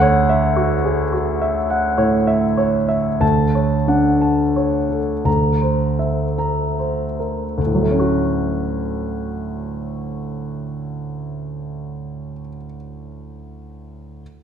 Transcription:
Already playing: D2 F#5
0.02 C#5
0.29 E5
0.56 F#4
0.85 G#4
1.12 F#4
1.42 E5
1.70 F#5
1.98 A2 C#5
2.27 E5
2.57 C#5
2.88 E5
3.20 D2 A5
3.55 C#5
3.88 D4 F#5
4.21 A5
4.56 C#5
4.90 A4
5.25 D2 A#5
5.62 C5
5.99 E5
6.38 A#5
6.79 C5
7.19 A#4
7.58 D2
7.66 A2
7.75 F#3
7.83 A3
7.91 C#4
7.99 F#4

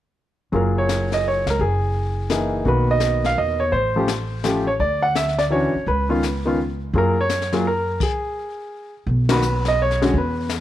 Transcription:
0.52 F#1 F#3 A#3 F4 G#4 A#4, brush sweep, kick
0.78 C#5
0.89 snare, hi-hat pedal
1.12 D#5, snare
1.28 C#5
1.46 C#2 A#4, snare
1.59 F#1 G#4, brush sweep, kick
2.30 E3 A#3 D#4 G#4, snare, hi-hat pedal
2.64 B1 D#3 A#3 B3 F#4 B4, brush sweep, kick
2.91 D#5
3.00 snare, hi-hat pedal
3.25 F5, snare
3.38 E2 D#5
3.60 C#5
3.72 A1 C5, brush sweep, kick
3.96 F3 A3 C#4 G4
4.08 snare, hi-hat pedal
4.44 F3 A3 C#4 G4, snare, hi-hat pedal
4.67 C#5
4.79 D2 D5, brush sweep, kick
5.02 F#5
5.15 E5, snare, hi-hat pedal
5.28 snare
5.38 D5, snare
5.50 E3 C#4 D4 F#4 C#5
5.75 muted upright bass stroke
5.87 C#2 B4, brush sweep, kick
6.09 D#3 B3 C#4 F4
6.23 snare, hi-hat pedal
6.45 D#3 B3 C#4 F4
6.93 F#2 F#3 A#3 F4 G#4, brush sweep, kick
6.98 A#4
7.21 C#5
7.29 snare, hi-hat pedal
7.41 snare
7.52 F#3 A#3 F4 G#4, snare
7.67 A#4
8.00 G#4, kick, crash
9.07 B1, brush sweep, kick
9.29 D#3 A#3 B3 F#4 B4, snare, ride
9.42 hi-hat pedal
9.65 D#5, snare
9.82 C#5
9.91 snare
10.02 D3 G#3 C#4 F#4, snare
10.14 E2, brush sweep, kick
10.18 B4
10.49 snare, hi-hat pedal

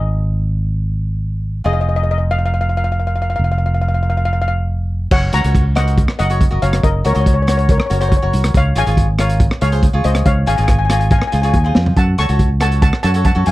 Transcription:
Already playing: G#1 D#4 G#4 C5 D#5
1.64 F1 F4 G#4 C5 D#5
1.73 D#5
1.81 D#5
1.89 D#5
1.96 D#5
2.04 D#5
2.11 D#5
2.18 D#5
2.31 F5
2.39 F5
2.46 F5
2.54 F5
2.61 F5
2.69 F5
2.77 F5
2.84 F5
2.92 F5
3.00 F5
3.07 F5
3.16 F5
3.22 F5
3.30 F5
3.36 F1 F5
3.44 F5
3.52 F5
3.58 F5
3.66 F5
3.75 F5
3.82 F5
3.88 F5
3.94 F5
4.03 F5
4.10 F5
4.17 F5
4.25 F5
4.33 F5
4.42 F5
4.48 F5
5.11 F#1 C#5 F#5, kick, crash
5.33 C#2 F#4 A#4 C#5 F#5 A#5, closed hi-hat
5.44 C#2 F#4 A#4 C#5, closed hi-hat
5.55 kick, closed hi-hat
5.75 F#4 A#4 C5 D#5 F#5, cross-stick, closed hi-hat
5.87 closed hi-hat
5.98 kick, closed hi-hat
6.08 cross-stick
6.19 F#1 F#4 A#4 D#5 F#5, closed hi-hat
6.30 F#4 A#4 C#5, closed hi-hat
6.41 kick, closed hi-hat
6.51 F#1 F#4 A#4 D#5
6.62 F#1 C#5 F5, closed hi-hat
6.73 cross-stick, closed hi-hat
6.83 F#1 A#4 D#5, kick, closed hi-hat
7.05 C#2 F#4 A#4 C#5, closed hi-hat
7.13 C#2 F#4 A#4 C#5 D#5, closed hi-hat
7.21 C#5
7.26 C#5, kick, closed hi-hat
7.34 C#5
7.42 C#5
7.47 F#4 A#4 C#5, cross-stick, closed hi-hat
7.57 C#5, closed hi-hat
7.69 A#4 C#5, kick, closed hi-hat
7.78 C#5, cross-stick
7.86 C#5
7.90 F#1 F#4 A#4 C#5, closed hi-hat
8.00 F#4 A#4 C5 C#5, closed hi-hat
8.09 C#5, kick, closed hi-hat
8.17 C#5
8.22 F#1 F#4 A#4 C#5
8.33 C2, closed hi-hat
8.44 cross-stick, closed hi-hat
8.54 C#2 C#5 F5, kick, closed hi-hat
8.75 G#1 F4 G#4 C#5 F5 G#5, closed hi-hat
8.86 G#1 F4 G#4 C#5, closed hi-hat
8.97 kick, closed hi-hat
9.18 F4 G#4 A#4 C#5 F5, cross-stick, closed hi-hat
9.29 closed hi-hat
9.40 kick, closed hi-hat
9.51 cross-stick
9.61 C#2 F4 G#4 C#5 F5, closed hi-hat
9.72 F4 G#4 C5, closed hi-hat
9.83 kick, closed hi-hat
9.93 C#2 F4 G#4 C#5
10.04 C#2 C5 D#5, closed hi-hat
10.15 cross-stick, closed hi-hat
10.26 C#2 C#5 F5, kick, closed hi-hat
10.46 G#1 F4 G#4 C#5 F5 G#5, closed hi-hat
10.56 G#1 F4 G#4 C#5 G#5, closed hi-hat
10.64 G#5
10.68 G#5, kick, cross-stick, closed hi-hat
10.79 G#5
10.85 G#5
10.90 F4 G#4 C#5 G#5, cross-stick, closed hi-hat
11.00 G#5, closed hi-hat
11.11 F5 G#5, kick, closed hi-hat
11.19 G#5, cross-stick
11.27 G#5
11.32 C#2 F4 G#4 C5 G#5, closed hi-hat
11.42 F4 G#4 C#5 G#5, closed hi-hat
11.49 G#5
11.54 D#2 G#5, kick, closed hi-hat
11.64 F4 G#4 C5 G#5
11.75 F2, snare
11.86 floor tom
11.96 F#2 F#5 A5, kick, closed hi-hat
12.18 C#2 F#4 A4 C#5 A5 C#6, closed hi-hat
12.29 C#2 F#4 A4 C#5, closed hi-hat
12.39 kick, closed hi-hat
12.60 F#4 A4 C#5 F#5 A5, cross-stick, closed hi-hat
12.71 closed hi-hat
12.82 F#5 A5, kick, closed hi-hat
12.93 cross-stick
13.03 F#2 F#4 A4 C#5 F#5 A5, closed hi-hat
13.14 F#4 A4 C#5, closed hi-hat
13.25 F#5 A5, kick, closed hi-hat
13.35 F#2 F#4 A4 C#5
13.46 F#2 F5 G#5, closed hi-hat

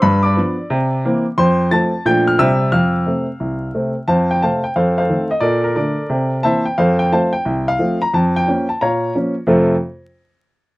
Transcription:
0.02 G2 B4 B5
0.23 D5 D6
0.37 F3 B3 D4
0.70 C3
1.05 E3 A#3 C4
1.38 F2 C5 C6
1.71 F3 A3 C4 A5 A6
2.05 A#2 F3 A3 D4 G5 G6
2.27 F6
2.39 C3 G3 C4 E5 E6
2.72 F2 F5 F6
3.06 C3 A3 C4
3.40 C2
3.74 C3 A3 C4
4.08 F2 C5 F5 A5
4.31 G5
4.42 C3 A3 C4 C5 F5 A5
4.64 G5
4.76 F2 A4 C5 F5
4.98 A4 C5 F5
5.09 D#3 A3 C4
5.31 D#5
5.40 A#2 A4 A#4 D5
5.64 A#4
5.76 D3 A3 D4 A4 A#4 D5
6.10 C3
6.43 E3 A#3 C4 C5 E5 A5
6.66 G5
6.78 F2 A4 C5 F5
6.99 G5
7.12 F3 A3 C4 C5 F5 A5
7.33 G5
7.45 C2
7.68 F5
7.79 F3 A3 C4
8.02 A#5
8.14 F2 A5
8.36 G5
8.47 F3 A#3 C#4
8.69 A5
8.81 A#2 C#5 F5 A#5
9.15 F3 A#3 C#4
9.47 F2 C3 A3 C4 F4 A4 A5

